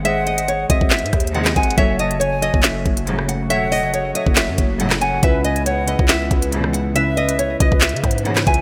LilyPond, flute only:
\new Staff \with { instrumentName = "Flute" } { \time 4/4 \key cis \minor \tempo 4 = 139 fis''4. e''8 r4 dis''8 fis''8 | r8 a''8 gis''4 r2 | fis''4. e''8 r4. fis''8 | r8 gis''8 fis''4 r2 |
e''4. dis''8 r4 cis''8 e''8 | }